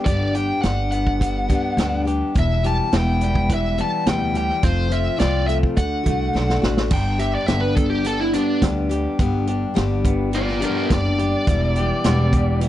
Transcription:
Already playing: clean electric guitar G3 B3 D4 G4
0.05 upright bass G1, steel-string acoustic guitar G2 D3 G3 B3 D4 G4, lead electric guitar D5, kick, closed hi-hat
0.35 steel-string acoustic guitar G3 B3 D4 G4, lead electric guitar G5, closed hi-hat
0.62 upright bass G1, steel-string acoustic guitar G2 D3, lead electric guitar F#5, snare, closed hi-hat
0.66 steel-string acoustic guitar G3 B3 D4 G4
0.92 clean electric guitar B3, lead electric guitar F#5, closed hi-hat
1.07 kick
1.20 steel-string acoustic guitar G3 B3 D4 G4, kick, closed hi-hat
1.49 steel-string acoustic guitar G3 B3 D4 G4, kick, closed hi-hat
1.77 upright bass D2, steel-string acoustic guitar G2 D3 G3 B3 D4 G4, snare, closed hi-hat
2.05 steel-string acoustic guitar G3 B3 D4 G4, closed hi-hat
2.34 upright bass E1, steel-string acoustic guitar E2 B2 E3 G3 B3 E4, kick, closed hi-hat
2.39 lead electric guitar E5
2.63 steel-string acoustic guitar E3 G3 B3 E4, clean electric guitar G4, lead electric guitar A5, closed hi-hat
2.91 upright bass E1, steel-string acoustic guitar E2 B2 E3 G3 B3 E4, snare, closed hi-hat
2.97 lead electric guitar G5
3.21 clean electric guitar G3, lead electric guitar G5, closed hi-hat
3.35 kick
3.49 steel-string acoustic guitar E3 G3 B3 E4, kick, closed hi-hat
3.54 lead electric guitar E5
3.78 steel-string acoustic guitar E3 G3 B3 E4, lead electric guitar A5, closed hi-hat
4.06 upright bass D2, steel-string acoustic guitar E2 B2 E3 G3 B3 E4, lead electric guitar G5, snare, closed hi-hat
4.33 steel-string acoustic guitar E3 G3 B3 E4, clean electric guitar G4, closed hi-hat
4.37 lead electric guitar G5
4.49 snare
4.63 upright bass F1, steel-string acoustic guitar F2 C3 F3 A3 C4 F4, lead electric guitar C5, kick, closed hi-hat
4.89 steel-string acoustic guitar F3 A3 C4 F4, lead electric guitar E5, closed hi-hat
5.17 upright bass C2, steel-string acoustic guitar F2 C3 F3 A3 C4 F4, lead electric guitar D5, snare, closed hi-hat
5.47 clean electric guitar A3, lead electric guitar E5, closed hi-hat
5.63 kick
5.76 upright bass D2, steel-string acoustic guitar D3 A3 D4 F#4, lead electric guitar F#5, kick, closed hi-hat
6.04 upright bass C2, steel-string acoustic guitar A3 D4 F#4, kick, closed hi-hat
6.33 upright bass B1, steel-string acoustic guitar D3 A3 D4 F#4, snare
6.49 snare
6.62 upright bass A1, steel-string acoustic guitar A3 D4 F#4, snare
6.77 snare
6.90 upright bass G1, steel-string acoustic guitar G2 D3 G3 B3 D4 G4, lead electric guitar G5, kick, crash
7.19 steel-string acoustic guitar G3 B3 D4 G4, lead electric guitar E5, closed hi-hat
7.35 lead electric guitar D5
7.46 upright bass G1, steel-string acoustic guitar G2 D3 G3 B3 D4 G4, lead electric guitar E5, snare, closed hi-hat
7.61 lead electric guitar B4
7.75 clean electric guitar B3, lead electric guitar A4, kick, closed hi-hat
7.90 lead electric guitar G4
8.04 steel-string acoustic guitar G3 B3 D4 G4, lead electric guitar A4, closed hi-hat
8.20 lead electric guitar E4, snare
8.33 steel-string acoustic guitar G3 B3 D4 G4, lead electric guitar D4, snare, closed hi-hat
8.61 upright bass D2, steel-string acoustic guitar G2 D3 G3 B3 D4 G4, kick, snare, closed hi-hat
8.89 steel-string acoustic guitar G3 B3 D4 G4, closed hi-hat
9.19 upright bass G1, steel-string acoustic guitar G2 D3 G3 B3 D4 G4, kick, closed hi-hat
9.47 steel-string acoustic guitar G3 B3 D4 G4, closed hi-hat
9.74 upright bass G1, steel-string acoustic guitar G2 D3 G3 B3 D4 G4, snare, closed hi-hat
10.05 clean electric guitar B3, kick, closed hi-hat
10.31 steel-string acoustic guitar G3 B3 D4 G4, lead electric guitar F4, closed hi-hat
10.36 lead electric guitar D5
10.49 snare
10.60 steel-string acoustic guitar G3 B3 D4 G4, lead electric guitar D4, closed hi-hat
10.65 lead electric guitar A#4
10.90 upright bass F#1, steel-string acoustic guitar G2 D3 G3 B3 D4 G4, lead electric guitar D5, kick, snare, closed hi-hat
11.19 steel-string acoustic guitar G3 B3 D4 G4, closed hi-hat
11.47 upright bass E1, steel-string acoustic guitar E2 B2 E3 G3 B3 E4, kick, closed hi-hat
11.76 steel-string acoustic guitar G3 B3 E4, clean electric guitar G4, closed hi-hat
11.80 steel-string acoustic guitar E3
12.04 upright bass E1, steel-string acoustic guitar E2 B2 E3 G3 B3 E4, snare, closed hi-hat
12.32 clean electric guitar G3, kick, closed hi-hat
12.60 steel-string acoustic guitar E3 G3 B3 E4, closed hi-hat

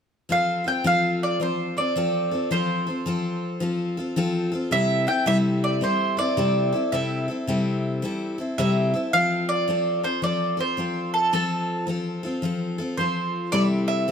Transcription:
0.29 steel-string acoustic guitar F3 C4 F4 A4, mandolin F5
0.64 steel-string acoustic guitar C4 F4 A4, mandolin G5
0.84 steel-string acoustic guitar F3 C4 F4 A4, mandolin F5
1.23 mandolin D5
1.40 steel-string acoustic guitar F3 C4 F4 A4, mandolin C5
1.77 steel-string acoustic guitar C4 F4 A4, mandolin D5
1.96 steel-string acoustic guitar F3 C4 F4 A4
2.31 steel-string acoustic guitar C4 F4 A4
2.51 steel-string acoustic guitar F3 C4 F4 A4, mandolin C5
2.87 steel-string acoustic guitar C4 F4 A4
3.06 steel-string acoustic guitar F3 C4 F4 A4
3.60 steel-string acoustic guitar F3 C4 F4 A4
3.97 steel-string acoustic guitar C4 F4 A4
4.16 steel-string acoustic guitar F3 C4 F4 A4
4.52 steel-string acoustic guitar C4 F4 A4
4.71 steel-string acoustic guitar C3 G3 C4 E4 A4, mandolin E5
5.07 steel-string acoustic guitar C4 E4 A4, mandolin G5
5.26 steel-string acoustic guitar C3 G3 C4 E4 A4, mandolin E5
5.64 mandolin D5
5.81 steel-string acoustic guitar G3 C4 E4 A4, mandolin C5
6.17 steel-string acoustic guitar C4 E4 A4, mandolin D5
6.37 steel-string acoustic guitar C3 G3 C4 E4 A4
6.72 steel-string acoustic guitar C4 E4 A4
6.92 steel-string acoustic guitar C3 G3 C4 E4 A4, mandolin E5
7.28 steel-string acoustic guitar C4 E4 A4
7.47 steel-string acoustic guitar C3 G3 C4 E4 A4
8.02 steel-string acoustic guitar G3 C4 E4 A4
8.38 steel-string acoustic guitar C4 E4 A4
8.58 steel-string acoustic guitar C3 G3 C4 E4 A4, mandolin E5
8.94 steel-string acoustic guitar C4 E4 A4
9.13 steel-string acoustic guitar F3 C4 F4 A4, mandolin F5
9.49 mandolin D5
9.68 steel-string acoustic guitar F3 C4 F4 A4
10.03 steel-string acoustic guitar C4 F4 A4, mandolin C5
10.22 steel-string acoustic guitar F3 C4 F4 A4, mandolin D5
10.57 steel-string acoustic guitar C4 F4 A4, mandolin C5
10.77 steel-string acoustic guitar F3 C4 F4 A4
11.14 mandolin A4
11.33 steel-string acoustic guitar F3 C4 F4 A4, mandolin A4
11.87 steel-string acoustic guitar F3 C4 F4 A4
12.23 steel-string acoustic guitar C4 F4 A4
12.42 steel-string acoustic guitar F3 C4 F4 A4
12.78 steel-string acoustic guitar C4 F4 A4
12.97 steel-string acoustic guitar F3 C4 F4 A4, mandolin C5
13.52 steel-string acoustic guitar C3 G3 C4 E4 A4, mandolin D5
13.88 mandolin E5
14.08 steel-string acoustic guitar G3

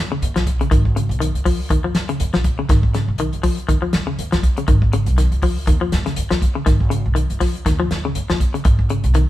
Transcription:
Already playing: upright bass D#2
0.12 clean electric guitar C#3
0.22 upright bass D#2, closed hi-hat
0.36 upright bass A#1, clean electric guitar F3, snare, closed hi-hat
0.47 kick, closed hi-hat
0.61 clean electric guitar C#3, closed hi-hat
0.71 upright bass G#1, clean electric guitar D#3, kick, closed hi-hat
0.85 kick
0.96 clean electric guitar C#3, closed hi-hat
1.09 upright bass B1, closed hi-hat
1.20 clean electric guitar D#3, closed hi-hat
1.34 upright bass C#2, closed hi-hat
1.45 clean electric guitar F3, kick, open hi-hat
1.70 upright bass D#2, clean electric guitar D#3, kick, closed hi-hat
1.84 clean electric guitar F3
1.95 upright bass D#2, snare, closed hi-hat
2.09 clean electric guitar C#3, closed hi-hat
2.20 upright bass D#2, closed hi-hat
2.33 upright bass A#1, clean electric guitar F3, snare, closed hi-hat
2.44 kick, closed hi-hat
2.59 clean electric guitar C#3
2.69 upright bass G#1, clean electric guitar D#3, kick, snare, closed hi-hat
2.83 kick
2.94 clean electric guitar C#3, snare, closed hi-hat
3.08 upright bass B1
3.18 clean electric guitar D#3, closed hi-hat
3.33 upright bass C#2, closed hi-hat
3.43 clean electric guitar F3, kick, open hi-hat
3.58 closed hi-hat
3.69 upright bass D#2, clean electric guitar D#3, kick, closed hi-hat
3.82 clean electric guitar F3
3.93 upright bass D#2, snare, closed hi-hat
4.07 clean electric guitar C#3
4.19 upright bass D#2, closed hi-hat
4.32 upright bass D#2, clean electric guitar F3, snare, closed hi-hat
4.43 kick, closed hi-hat
4.57 clean electric guitar C#3, closed hi-hat
4.68 upright bass G#1, clean electric guitar D#3, kick, closed hi-hat
4.82 kick
4.93 clean electric guitar C#3, closed hi-hat
5.06 upright bass B1, closed hi-hat
5.18 clean electric guitar D#3, snare, closed hi-hat
5.32 upright bass C#2, closed hi-hat
5.42 clean electric guitar F3, kick, open hi-hat
5.67 upright bass D#2, clean electric guitar D#3, kick, closed hi-hat
5.81 clean electric guitar F3
5.92 upright bass D#2, snare, closed hi-hat
6.06 clean electric guitar C#3, snare, closed hi-hat
6.16 upright bass D#2, closed hi-hat
6.31 upright bass D#2, clean electric guitar F3, snare, closed hi-hat
6.42 kick, closed hi-hat
6.55 clean electric guitar C#3
6.66 upright bass G#1, clean electric guitar D#3, kick, snare, closed hi-hat
6.80 kick
6.90 clean electric guitar C#3, closed hi-hat
7.06 upright bass B1
7.15 clean electric guitar D#3, closed hi-hat
7.30 upright bass C#2, closed hi-hat
7.41 clean electric guitar F3, kick, snare, open hi-hat
7.55 closed hi-hat
7.66 upright bass D#2, clean electric guitar D#3, kick, snare, closed hi-hat
7.80 clean electric guitar F3
7.91 upright bass D#2, snare, closed hi-hat
8.05 clean electric guitar C#3
8.15 upright bass D#2, closed hi-hat
8.29 upright bass D#2, clean electric guitar F3, snare, closed hi-hat
8.40 kick, closed hi-hat
8.54 clean electric guitar C#3, closed hi-hat
8.65 upright bass G#1, muted clean electric guitar stroke, kick, closed hi-hat
8.79 kick
8.90 clean electric guitar C#3, closed hi-hat
9.04 upright bass B1, closed hi-hat
9.14 clean electric guitar D#3, closed hi-hat

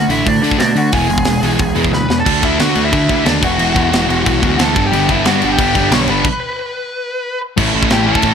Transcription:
0.08 picked electric bass A1, distorted electric guitar D3 A3 D4, lead electric guitar E4 E5, open hi-hat
0.26 picked electric bass A2, distorted electric guitar D3 A3, lead electric guitar D4 D5, kick, open hi-hat
0.42 picked electric bass D3, distorted electric guitar D3 A3 D4, open hi-hat
0.51 kick
0.58 picked electric bass B2, distorted electric guitar D3 A3, lead electric guitar D4 D5, snare, open hi-hat
0.76 picked electric bass D3, distorted electric guitar D3 A3, lead electric guitar F#4 F#5, open hi-hat
0.92 picked electric bass E1, distorted electric guitar E2 B2 E3 G#3 B3, lead electric guitar G#4 G#5, kick, open hi-hat
1.10 picked electric bass E1, distorted electric guitar E2 B2 E3 G#3, open hi-hat
1.18 kick
1.25 picked electric bass E1, distorted electric guitar E2 B2 E3 G#3, snare, open hi-hat
1.42 picked electric bass B1, distorted electric guitar E2 B2 E3 G#3 B3, open hi-hat
1.59 picked electric bass B1, distorted electric guitar E2 B2 E3 G#3, kick, open hi-hat
1.75 distorted electric guitar E2 B2 E3 G#3 B3, picked electric bass E2, open hi-hat
1.84 kick
1.91 picked electric bass D2, distorted electric guitar E2 B2 E3 G#3, lead electric guitar B4 B5, snare
2.08 picked electric bass E2, distorted electric guitar E2 B2 E3 G#3, snare
2.20 lead electric guitar A4 A5
2.25 picked electric bass D2, distorted electric guitar D3 A3 D4 F#4, kick, crash
2.42 distorted electric guitar D3 A3 D4 F#4, lead electric guitar E5, kick, crash
2.46 lead electric guitar E4
2.59 picked electric bass D3, distorted electric guitar D3 A3 D4 F#4, lead electric guitar F#4 F#5, snare, crash
2.75 picked electric bass D2, distorted electric guitar D3 A3 D4 F#4, crash
2.84 lead electric guitar E4 E5
2.92 picked electric bass D2, distorted electric guitar D3 A3 D4 F#4, kick, crash
3.08 distorted electric guitar D3 A3 D4 F#4, kick, crash
3.25 picked electric bass D#2, distorted electric guitar D3 A3 D4 F#4, lead electric guitar D4 D5, snare, crash
3.41 picked electric bass E1, distorted electric guitar E2 B2 E3 G#3 B3 E4, lead electric guitar F#4 F#5, kick, crash
3.58 picked electric bass E1, distorted electric guitar E2 B2 E3 G#3 B3 E4, crash
3.75 distorted electric guitar E2 B2 E3 G#3 B3 E4, picked electric bass E2, kick, crash
3.91 picked electric bass E1, distorted electric guitar E2 B2 E3 G#3 B3 E4, snare, crash
4.07 picked electric bass E1, distorted electric guitar E2 B2 E3 G#3 B3 E4, crash
4.24 picked electric bass B1, distorted electric guitar E2 B2 E3 G#3 B3 E4, kick, crash
4.40 picked electric bass D2, distorted electric guitar E2 B2 E3 G#3 B3 E4, kick, crash
4.58 picked electric bass D2, distorted electric guitar E2 B2 E3 G#3 B3 E4, lead electric guitar A4 A5, snare, crash
4.74 picked electric bass G1, distorted electric guitar G2 D3 G3 B3 D4, kick, crash
4.86 lead electric guitar G4 G5
4.92 picked electric bass G1, distorted electric guitar G2 D3 G3 B3 D4, crash
5.09 distorted electric guitar G2 D3 G3 B3 D4, lead electric guitar E4 E5, kick, crash
5.25 picked electric bass G2, distorted electric guitar G2 D3 G3 B3 D4, lead electric guitar F#4 F#5, snare, crash
5.42 picked electric bass G1, distorted electric guitar G2 D3 G3 B3 D4, crash
5.52 lead electric guitar G4 G5
5.59 picked electric bass G1, distorted electric guitar G2 D3 G3 B3 D4, kick, crash
5.75 distorted electric guitar G2 D3 G3 B3 D4, kick, crash
5.91 picked electric bass B1, distorted electric guitar G2 D3 G3 B3 D4, lead electric guitar C#5 C#6, snare, crash
6.07 picked electric bass G1, distorted electric guitar G2 D3 G3 B3 D4, lead electric guitar B4 B5, crash
6.25 kick, crash
7.57 picked electric bass A1, distorted electric guitar A2 E3 A3 C#4 E4 A4, kick, crash
7.74 picked electric bass A1, distorted electric guitar A2 E3 A3 C#4 E4 A4
7.83 kick
7.90 picked electric bass A1, distorted electric guitar A2 E3 A3 C#4 E4 A4, lead electric guitar G4 G5, snare, crash
8.06 distorted electric guitar A2 E3 A3 C#4 E4 A4, lead electric guitar A4 A5
8.15 kick
8.22 picked electric bass A2, distorted electric guitar A2 E3 A3 C#4 E4 A4, kick, crash

